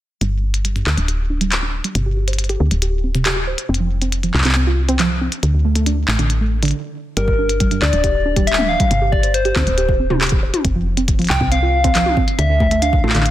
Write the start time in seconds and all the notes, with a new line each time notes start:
0.21 G1 G3, closed hi-hat
0.43 D4
0.54 closed hi-hat
0.65 G3, closed hi-hat
0.76 G2, closed hi-hat
0.87 D2 D4, clap
0.97 D1 D4, closed hi-hat
1.08 G4, closed hi-hat
1.30 D4
1.41 G3, closed hi-hat
1.52 clap, closed hi-hat
1.63 D4
1.84 G3, closed hi-hat
1.95 G1 C3, closed hi-hat
2.06 G4
2.17 G4
2.28 C5, closed hi-hat
2.33 closed hi-hat
2.39 closed hi-hat
2.44 closed hi-hat
2.49 G4, closed hi-hat
2.60 D2 C4
2.71 D1, closed hi-hat
2.82 G4, closed hi-hat
3.04 C4
3.15 C3, closed hi-hat
3.26 G4, clap, closed hi-hat
3.36 G4
3.47 C5
3.58 closed hi-hat
3.69 F1 C4
3.74 closed hi-hat
3.80 F3
4.02 C4, closed hi-hat
4.12 closed hi-hat
4.23 F3, closed hi-hat
4.34 C2 F2, clap
4.38 clap
4.41 clap
4.45 C2 C4, clap, closed hi-hat
4.49 clap
4.52 C4, clap
4.67 F4
4.89 C4, closed hi-hat
4.99 F3, clap, closed hi-hat
5.21 C4
5.32 closed hi-hat
5.43 D2 D3, closed hi-hat
5.54 D2
5.65 A3
5.75 A3, closed hi-hat
5.86 D4, closed hi-hat
6.08 A1 A3, clap
6.19 A1 D3, closed hi-hat
6.30 closed hi-hat
6.41 A3
6.63 D3, closed hi-hat
6.65 closed hi-hat
6.68 closed hi-hat
6.71 closed hi-hat
7.17 G1 G3 A#4, closed hi-hat
7.28 kick
7.39 D4
7.49 closed hi-hat
7.60 G3, kick, closed hi-hat
7.71 G2, closed hi-hat
7.82 D2 D4 D5, clap
7.93 D1 D4, closed hi-hat
8.04 G4, kick, closed hi-hat
8.25 D4
8.36 G3, kick, closed hi-hat
8.47 E5, closed hi-hat
8.53 clap
8.58 D4, high tom
8.69 F5
8.80 G3, kick, closed hi-hat
8.91 G1 C3, closed hi-hat
9.02 G4
9.12 G4 D5, kick
9.23 C5, closed hi-hat
9.34 C5, closed hi-hat
9.45 G4, closed hi-hat
9.56 D2 C4, kick, clap, high tom
9.67 D1, closed hi-hat
9.78 G4, closed hi-hat
9.89 kick
10.00 C4
10.10 C3, high tom
10.21 G4, clap, closed hi-hat
10.24 closed hi-hat
10.27 closed hi-hat
10.29 G4, kick, closed hi-hat
10.43 C5
10.54 closed hi-hat, high tom
10.65 F1 C4, kick, closed hi-hat
10.75 F3
10.97 C4, closed hi-hat
11.08 kick, closed hi-hat
11.19 F3, closed hi-hat
11.22 closed hi-hat
11.24 closed hi-hat
11.27 C2 F2 G5, clap, closed hi-hat
11.41 C2 C4, kick
11.52 C4 F5, closed hi-hat
11.63 F4
11.84 C4, kick, closed hi-hat
11.95 F3, clap, closed hi-hat
12.06 high tom
12.17 C4, kick
12.28 closed hi-hat
12.38 D2 D3 E5, closed hi-hat
12.49 D2
12.60 A3, kick
12.71 A3, closed hi-hat
12.82 D4 F5, closed hi-hat
12.93 kick
13.04 A1 A3, high tom
13.08 clap, high tom
13.11 A1, clap, closed hi-hat, high tom
13.15 D3, high tom
13.18 clap, high tom
13.22 closed hi-hat, high tom